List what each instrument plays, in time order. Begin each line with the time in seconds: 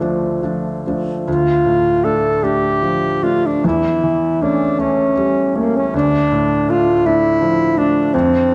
Already playing: grand piano D2
0.00 grand piano F3 A3 D4
0.43 grand piano F3 A3 D4
0.87 grand piano F3 A3 D4
1.26 grand piano D2, alto saxophone F4
1.66 grand piano A2
2.04 grand piano A3 D4, alto saxophone A4
2.42 grand piano A3 D4, alto saxophone G4
2.83 grand piano F3
3.23 grand piano A3 D4, alto saxophone F4
3.46 alto saxophone D4
3.64 grand piano E2, alto saxophone E4
4.04 grand piano E3
4.42 grand piano A3 C#4, alto saxophone D4
4.79 grand piano A3 C#4, alto saxophone C#4
5.17 grand piano G3
5.56 grand piano A3 C#4, alto saxophone A#3
5.77 alto saxophone C#4
5.94 grand piano D2, alto saxophone D4
6.32 grand piano A2
6.69 grand piano A3 D4, alto saxophone F4
7.06 grand piano A3 D4, alto saxophone E4
7.41 grand piano F3
7.77 grand piano A3 D4, alto saxophone D4
8.14 grand piano F2, alto saxophone C4